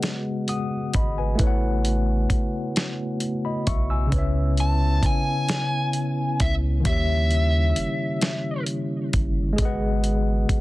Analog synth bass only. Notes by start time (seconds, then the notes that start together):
0.96 G#1
1.40 A1
2.31 B1
3.68 B1
4.14 C#2
5.03 C#2
6.42 C#2
6.87 D#2
7.78 G1
9.15 G1
9.59 G#1
10.50 G#1